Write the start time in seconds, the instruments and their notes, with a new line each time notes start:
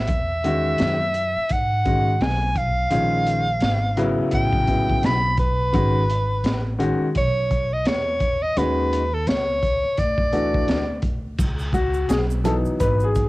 Already playing: soprano saxophone E5
0.08 upright bass E2, kick, closed hi-hat
0.44 grand piano D#3 G#3 C#4 F#4, closed hi-hat
0.78 upright bass F#2, snare, closed hi-hat
1.14 closed hi-hat
1.37 muted upright bass stroke
1.49 upright bass G#2, soprano saxophone F#5, kick, closed hi-hat
1.85 grand piano D#3 G#3 C#4 F#4, kick, closed hi-hat
2.21 upright bass B1, soprano saxophone G#5, snare, closed hi-hat
2.56 soprano saxophone F5, kick, closed hi-hat
2.90 upright bass A#1, grand piano D#3 G#3 C#4 F4, closed hi-hat
3.26 closed hi-hat
3.60 upright bass G#1, snare, closed hi-hat
3.97 grand piano C#3 F#3 B3 E4, closed hi-hat
4.18 muted upright bass stroke
4.31 upright bass A1, soprano saxophone G5, kick, closed hi-hat
4.53 kick
4.67 grand piano C#3 F#3 B3 E4, kick, closed hi-hat
4.89 kick
5.03 upright bass B1, soprano saxophone B5, snare, closed hi-hat
5.37 soprano saxophone B4, kick, closed hi-hat
5.73 upright bass G#1, grand piano D#3 G#3 C#4 F#4, kick, closed hi-hat
6.10 closed hi-hat
6.44 upright bass A1, snare, closed hi-hat
6.79 grand piano D#3 G#3 C#4 F#4, closed hi-hat
6.99 muted upright bass stroke
7.15 upright bass B1, soprano saxophone C#5, kick, closed hi-hat
7.51 kick, closed hi-hat
7.73 soprano saxophone D#5
7.85 upright bass E2, soprano saxophone C#5, snare, closed hi-hat
8.20 kick, closed hi-hat
8.42 soprano saxophone D#5
8.56 upright bass D#2, grand piano D#3 G#3 C#4 F#4, soprano saxophone B4, closed hi-hat
8.93 closed hi-hat
9.14 soprano saxophone A4
9.27 upright bass C#2, soprano saxophone C#5, snare, closed hi-hat
9.63 kick, closed hi-hat
9.83 muted upright bass stroke
9.97 upright bass D2, soprano saxophone D5, kick, closed hi-hat
10.18 kick
10.32 grand piano E3 A3 D4 F#4, closed hi-hat
10.54 kick
10.68 upright bass D2, snare, closed hi-hat
11.02 kick, closed hi-hat
11.38 upright bass C#2, kick, crash, shaker
11.59 shaker
11.73 grand piano F#4, kick, closed hi-hat, high conga, shaker
11.94 shaker
12.09 upright bass B1, grand piano G#4, snare, closed hi-hat, shaker
12.30 shaker
12.44 grand piano E3 F#3 B3 D#4 A4, closed hi-hat, low conga, shaker
12.65 muted upright bass stroke, shaker
12.80 upright bass G#1, grand piano B4, kick, closed hi-hat, shaker
13.00 grand piano G#4, shaker
13.15 kick, closed hi-hat, shaker